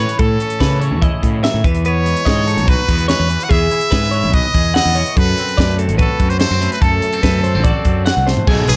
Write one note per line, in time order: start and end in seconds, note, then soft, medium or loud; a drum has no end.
0.00 0.17 A2 medium
0.00 0.60 E3 medium
0.00 0.17 C#4 medium
0.00 1.03 E4 medium
0.00 0.22 G#4 medium
0.00 0.19 B4 medium
0.00 0.21 C#5 medium
0.09 closed hi-hat medium
0.19 1.62 A2 medium
0.19 0.36 A2 medium
0.19 0.60 A4 medium
0.19 1.02 A4 medium
0.19 kick loud
0.19 closed hi-hat medium
0.40 0.82 C#4 medium
0.40 closed hi-hat medium
0.50 closed hi-hat medium
0.60 0.93 C#3 medium
0.60 1.64 E3 medium
0.60 0.80 B4 medium
0.60 kick medium
0.60 snare loud
0.60 closed hi-hat medium
0.80 1.63 C#4 medium
0.80 1.02 C#5 medium
0.80 closed hi-hat medium
0.91 1.08 E2 medium
1.02 2.47 E4 medium
1.02 1.43 D#5 medium
1.02 kick loud
1.02 closed hi-hat medium
1.23 1.47 A2 medium
1.23 1.42 C#3 medium
1.23 kick medium
1.23 closed hi-hat medium
1.43 1.64 D#3 medium
1.43 1.64 E5 medium
1.43 snare loud
1.43 closed hi-hat medium
1.54 1.62 A2 medium
1.64 2.14 E2 medium
1.64 3.28 E3 medium
1.64 1.85 B4 medium
1.64 kick loud
1.64 closed hi-hat medium
1.75 closed hi-hat medium
1.85 2.25 B3 medium
1.85 2.27 B4 medium
1.85 2.71 C#5 medium
1.85 closed hi-hat medium
2.05 3.08 G#3 medium
2.05 closed hi-hat medium
2.16 closed hi-hat medium
2.25 2.59 G#2 medium
2.25 2.88 B3 medium
2.25 2.47 D#5 medium
2.25 kick medium
2.25 snare loud
2.25 closed hi-hat medium
2.47 3.33 D#4 medium
2.47 2.67 A4 medium
2.47 closed hi-hat medium
2.57 2.74 B1 medium
2.57 closed hi-hat medium
2.67 4.14 F#4 medium
2.67 3.09 B4 medium
2.67 3.08 B4 medium
2.67 kick loud
2.67 closed hi-hat medium
2.88 3.13 E2 medium
2.88 3.28 B3 medium
2.88 kick medium
2.88 closed hi-hat medium
2.99 closed hi-hat medium
3.08 3.28 G#3 medium
3.08 3.45 B4 medium
3.08 3.29 C#5 medium
3.08 snare loud
3.08 closed hi-hat medium
3.20 3.36 E2 medium
3.29 4.95 E3 medium
3.29 3.50 B4 medium
3.29 closed hi-hat medium
3.40 3.53 F#5 medium
3.40 closed hi-hat medium
3.49 3.67 E2 medium
3.49 3.92 G#4 medium
3.49 4.36 E5 loud
3.49 kick loud
3.49 closed hi-hat medium
3.71 4.73 E4 medium
3.71 closed hi-hat medium
3.81 closed hi-hat medium
3.91 4.25 G#2 loud
3.91 4.53 G#4 medium
3.91 4.11 B4 medium
3.91 kick medium
3.91 snare loud
3.91 closed hi-hat medium
4.04 snare soft
4.11 4.33 B4 medium
4.11 4.32 C#5 medium
4.11 closed hi-hat medium
4.24 4.40 B1 medium
4.32 4.93 B4 medium
4.32 4.74 D#5 medium
4.32 4.75 D#5 loud
4.32 kick loud
4.32 closed hi-hat medium
4.54 4.79 E2 medium
4.54 4.93 G#4 medium
4.54 kick medium
4.54 closed hi-hat medium
4.74 4.93 E4 medium
4.74 5.19 D#5 loud
4.74 4.95 F#5 medium
4.74 snare loud
4.74 closed hi-hat medium
4.85 5.02 E2 medium
4.95 5.17 E3 medium
4.95 5.16 C#5 medium
4.95 closed hi-hat medium
5.06 closed hi-hat medium
5.16 6.79 F#2 medium
5.16 5.33 F#2 loud
5.16 5.58 A4 medium
5.16 5.79 B4 medium
5.16 kick loud
5.16 closed hi-hat medium
5.37 5.79 C4 medium
5.37 closed hi-hat medium
5.49 closed hi-hat medium
5.58 5.89 F#2 medium
5.58 6.41 A3 medium
5.58 5.79 D5 medium
5.58 kick medium
5.58 snare loud
5.58 closed hi-hat medium
5.78 6.41 C4 medium
5.78 5.98 A4 medium
5.78 closed hi-hat medium
5.88 6.05 A1 medium
5.88 closed hi-hat medium
5.98 6.20 F#4 medium
5.98 6.31 A4 medium
5.98 6.39 B4 medium
5.98 kick loud
5.98 closed hi-hat medium
6.20 6.45 F#2 medium
6.20 7.16 F#4 medium
6.20 kick medium
6.20 closed hi-hat medium
6.30 6.39 C5 medium
6.30 closed hi-hat medium
6.40 6.51 A3 medium
6.40 6.61 C5 medium
6.40 6.69 C5 medium
6.40 snare loud
6.40 closed hi-hat medium
6.51 6.67 F#2 medium
6.51 6.82 C4 soft
6.61 7.03 A3 medium
6.61 6.81 B4 medium
6.61 closed hi-hat medium
6.72 6.83 B4 medium
6.72 closed hi-hat medium
6.81 8.47 F#2 medium
6.81 6.98 F#2 loud
6.81 7.23 A4 medium
6.81 8.06 A4 medium
6.81 kick loud
6.81 closed hi-hat medium
7.02 7.13 A3 medium
7.02 closed hi-hat medium
7.13 7.44 C4 medium
7.13 closed hi-hat medium
7.23 7.56 F#2 medium
7.23 7.43 A3 medium
7.23 7.43 B4 medium
7.23 kick medium
7.23 snare loud
7.23 closed hi-hat medium
7.44 7.55 A3 medium
7.44 7.65 C5 medium
7.44 closed hi-hat medium
7.55 7.71 A1 medium
7.55 8.05 C4 medium
7.64 7.84 F#4 medium
7.64 8.05 D5 medium
7.64 kick loud
7.64 closed hi-hat medium
7.85 8.10 F#2 medium
7.85 8.45 F#4 medium
7.85 kick medium
7.85 closed hi-hat medium
8.06 8.45 C4 medium
8.06 8.27 F#5 medium
8.06 snare loud
8.06 closed hi-hat medium
8.17 8.33 C2 loud
8.27 8.45 A3 medium
8.27 8.47 C5 medium
8.27 snare medium
8.37 floor tom medium
8.47 8.55 B1 loud
8.47 8.76 B2 medium
8.47 8.67 F#3 medium
8.47 8.76 A3 medium
8.47 8.67 B3 medium
8.47 8.67 D#4 medium
8.47 8.68 G#4 medium
8.47 8.67 A4 medium
8.47 kick loud
8.47 crash loud
8.68 8.76 B1 medium
8.68 8.76 C#4 medium
8.68 8.76 G#4 medium
8.68 8.76 B4 medium
8.68 muted overdriven electric guitar stroke soft
8.68 closed hi-hat medium